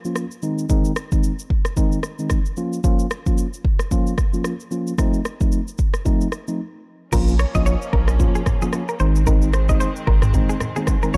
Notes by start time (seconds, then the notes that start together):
0.05 F3 A#3 C#4 F4, shaker
0.16 cross-stick, shaker
0.31 shaker
0.42 D#3 G#3 C4 D#4, shaker
0.58 shaker
0.69 D#3 G#3 C4 D#4, kick, shaker
0.85 shaker
0.96 cross-stick, shaker
1.12 D#3 G#3 C4 D#4, kick, shaker
1.23 shaker
1.39 shaker
1.50 kick
1.65 cross-stick, shaker
1.77 D#3 G#3 C4 D#4, kick, shaker
1.92 shaker
2.03 cross-stick, shaker
2.19 D#3 G#3 C4 D#4, shaker
2.30 kick, cross-stick, shaker
2.46 shaker
2.57 F3 A#3 C#4 F4, shaker
2.73 shaker
2.84 F3 A#3 C#4 F4, kick, shaker
2.99 shaker
3.11 cross-stick, shaker
3.26 F3 A#3 C#4 F4, kick, shaker
3.38 shaker
3.54 shaker
3.65 kick
3.79 cross-stick, shaker
3.91 F3 A#3 C#4 F4, kick, shaker
4.07 shaker
4.18 kick, cross-stick, shaker
4.33 F3 A#3 C#4 F4, shaker
4.44 cross-stick, shaker
4.60 shaker
4.71 F3 A#3 C#4 F4, shaker
4.87 shaker
4.98 F3 A3 C4 D#4, kick, cross-stick, shaker
5.14 shaker
5.25 cross-stick, shaker
5.40 F3 A3 C4 D#4, kick, shaker
5.52 shaker
5.68 shaker
5.78 kick, shaker
5.94 cross-stick, shaker
6.05 F3 A3 C4 D#4, kick, shaker
6.21 shaker
6.32 cross-stick, shaker
6.48 F3 A3 C4 D#4, shaker
7.12 A#1 F3 A#3 C#4 F4 A#4, kick, crash, low conga, shaker
7.28 shaker
7.39 C#5, cross-stick, shaker
7.55 A#1 F3 A#3 C#4 F4 D#5, kick, low bongo, shaker
7.66 C#5, high bongo, shaker
7.82 shaker
7.93 A#1 A#4, kick, high bongo, low bongo
8.08 cross-stick, shaker
8.20 F3 A#3 C#4 F4, kick, low conga, shaker
8.35 G#4, shaker
8.46 kick, cross-stick, low conga, shaker
8.62 F3 A#3 C#4 F4 G#4, low bongo, shaker
8.73 cross-stick, high bongo, shaker
8.89 A#4, shaker
9.00 G#1 D#3 G#3 C4 D#4 C5, shaker
9.16 shaker
9.27 D#3 G#3 C4 D#4 A#4, kick, low conga, shaker
9.42 shaker
9.53 C5, cross-stick, shaker
9.69 D#3 G#3 C4 D#4 D#5, kick, low bongo, shaker
9.80 C5, high bongo, shaker
9.96 shaker
10.07 G#1 A#4, kick, high bongo, low bongo
10.22 cross-stick, mid tom, shaker
10.34 D#3 G#3 C4 D#4, kick, low conga, shaker
10.49 G#4, shaker
10.60 cross-stick, low conga, shaker
10.76 D#3 G#3 C4 D#4 G#4, low bongo, shaker
10.87 kick, cross-stick, high bongo, shaker
11.03 D#3 G#3 C4 D#4 A#4, shaker
11.14 F3 A#3 C#4 C#5, shaker